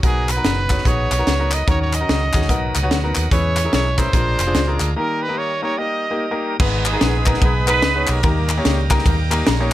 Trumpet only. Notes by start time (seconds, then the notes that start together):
0.05 G#4
0.31 B4
0.88 C#5
1.54 D#5
1.70 C#5
1.81 C#5
1.95 D#5
3.32 C#5
3.74 C#5
3.99 C5
4.97 A#4
5.22 B4
5.38 C#5
5.63 C#5
5.78 D#5